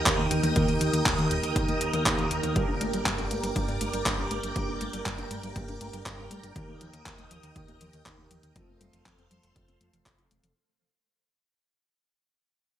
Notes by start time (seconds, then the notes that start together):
Already playing: A#4 D#5 G5 D#6
0.06 D#2 D#3 A#3 D#4 G4 A#4, kick, clap, closed hi-hat
0.18 D#2 A#3
0.31 D#2 D#3, closed hi-hat, high tom
0.43 D#2 D#3, closed hi-hat, high tom
0.56 D#2 D#3 A#3 D#4 G4 A#4, kick, closed hi-hat
0.68 D#2 A#3, closed hi-hat
0.81 D#2 D#3, closed hi-hat
0.93 D#2 D#3, closed hi-hat
1.06 D#1 D#3, kick, clap, closed hi-hat, high tom
1.18 D#2 A#3, closed hi-hat
1.31 D#1 D#3, closed hi-hat
1.43 D#2 D#3, closed hi-hat
1.56 D#2 D#3, kick, closed hi-hat
1.68 D#2 A#3, closed hi-hat
1.81 D#2 D#3, closed hi-hat
1.93 D#2 D#3, closed hi-hat, high tom
2.06 D#2 D#3 A#3 D#4 G4 A#4, kick, clap, closed hi-hat
2.18 D#1 A#3, closed hi-hat, high tom
2.31 D#2 D#3, closed hi-hat
2.43 D#2 D#3, closed hi-hat, high tom
2.56 G1 G2 G3 A#3 D4 G4 A#4 D5 G5 D6, kick, closed hi-hat
2.68 G1 D4
2.81 G1 A3, closed hi-hat
2.93 G1 G3, closed hi-hat
3.06 G1 G3, kick, clap, closed hi-hat
3.18 G1 D4, closed hi-hat
3.31 G1 A3, closed hi-hat
3.43 G1 G3, closed hi-hat
3.56 G1 G3, kick, closed hi-hat
3.68 G2 D4, closed hi-hat
3.81 G1 A3, closed hi-hat
3.93 G1 G3, closed hi-hat
4.06 G1 G2 G3 A#3 D4 G4 A#4, kick, clap, closed hi-hat
4.18 G1 D4
4.31 G1 A3, closed hi-hat
4.43 G1 G3, closed hi-hat
4.56 G1 G2 G3 A#3 D4 G4 A#4, kick, closed hi-hat
4.68 G1 D4
4.81 G1 A3, closed hi-hat
4.93 G1 G3, closed hi-hat
5.06 G2 G3, kick, clap, closed hi-hat
5.18 G1 D4, closed hi-hat
5.31 G2 A3, closed hi-hat
5.43 G1 G3, closed hi-hat
5.56 G1 G3, kick, closed hi-hat
5.68 G1 D4, closed hi-hat
5.81 G1 A3, closed hi-hat
5.93 G1 G3, closed hi-hat
6.06 G1 G2 G3 A#3 D4 G4 A#4, kick, clap, closed hi-hat
6.18 G1 D4
6.31 G2 A3, closed hi-hat
6.43 G1 G3, closed hi-hat
6.56 D#2 D#3 A#3 D#4 G4 A#4 D#5 D#6, kick, closed hi-hat
6.68 D#2 A#3
6.81 D#2 F3, closed hi-hat
6.93 D#2 D#3, closed hi-hat
7.06 D#2 D#3, kick, clap, closed hi-hat
7.18 D#2 A#3, closed hi-hat
7.31 D#2 F3, closed hi-hat
7.43 D#2 D#3, closed hi-hat
7.56 D#2 D#3, kick, closed hi-hat
7.68 D#1 A#3, closed hi-hat
7.81 D#2 F3, closed hi-hat
7.93 D#2 D#3, closed hi-hat
8.06 D#2 D#3 A#3 D#4 G4 A#4, kick, clap, closed hi-hat
8.18 D#2 A#3
8.31 D#2 F3, closed hi-hat
8.43 D#2 D#3, closed hi-hat
8.56 F1 F3 A3 C4 F4 A4 C5 F5 C6, kick, closed hi-hat
8.68 F1 C4
8.81 F1 G3, closed hi-hat
8.93 F1 F3, closed hi-hat
9.06 F2 F3, kick, clap, closed hi-hat
9.18 F1 C4, closed hi-hat
9.31 F2 G3, closed hi-hat
9.43 F1 F3, closed hi-hat
9.56 F1 F3, kick, closed hi-hat
9.68 F1 C4, closed hi-hat
9.81 F2 A3 C4 F4 A4, closed hi-hat
9.93 F1 F3, closed hi-hat
10.06 F1 C3, kick, clap, closed hi-hat
10.18 F1 F4, closed hi-hat
10.31 D#1 A3, closed hi-hat
10.43 F1 F3, closed hi-hat